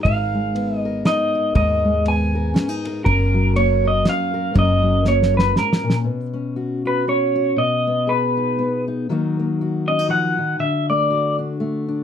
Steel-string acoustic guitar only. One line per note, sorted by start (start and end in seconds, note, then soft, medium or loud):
0.00 1.06 D#4 medium
0.05 1.53 G#2 medium
0.05 0.85 A#4 medium
0.34 1.53 G#3 medium
0.55 1.53 B3 medium
0.85 1.35 A#4 medium
1.06 1.53 D#4 medium
1.35 1.55 A#4 medium
1.55 3.03 G#2 medium
1.55 2.35 A#4 medium
1.85 3.03 G#3 medium
2.06 3.04 B3 medium
2.35 2.86 A#4 medium
2.54 2.69 C#4 medium
2.69 3.05 D#4 soft
2.87 3.84 A#4 medium
3.05 4.53 F#2 medium
3.05 4.05 C#4 medium
3.34 4.54 F#3 medium
3.56 4.54 A#3 medium
3.85 4.33 A#4 medium
4.05 4.55 C#4 medium
4.34 4.53 A#4 medium
4.54 5.55 F#2 medium
4.54 4.81 F#3 medium
4.54 5.04 A#3 medium
4.54 6.32 C#4 medium
4.54 5.33 A#4 medium
4.82 6.03 F#3 medium
5.05 6.04 A#3 medium
5.34 6.04 A#4 medium
5.55 5.83 G#2 medium
5.83 6.06 A#2 medium
6.04 7.55 B2 medium
6.34 7.06 C#4 medium
6.56 6.84 F#4 medium
6.86 7.34 F#4 medium
7.08 7.55 C#4 medium
7.36 7.57 F#4 medium
7.56 9.08 B2 medium
7.87 8.57 B3 medium
8.07 9.06 G#4 medium
8.37 8.87 D#4 medium
8.59 9.06 B3 medium
8.88 9.06 D#4 medium
9.09 10.37 D#3 medium
9.09 10.08 F#3 medium
9.09 9.38 A#3 medium
9.09 9.88 D#4 medium
9.09 9.61 F#4 medium
9.39 10.58 A#3 medium
9.61 11.10 F#4 medium
9.89 9.99 C#4 medium
9.99 10.59 D#4 soft
10.08 10.38 F3 medium
10.38 10.59 D#3 medium
10.59 12.04 D3 medium
10.89 11.59 A3 medium
11.10 12.04 F#4 medium
11.39 11.87 D4 medium
11.60 12.04 A3 medium
11.89 12.04 D4 medium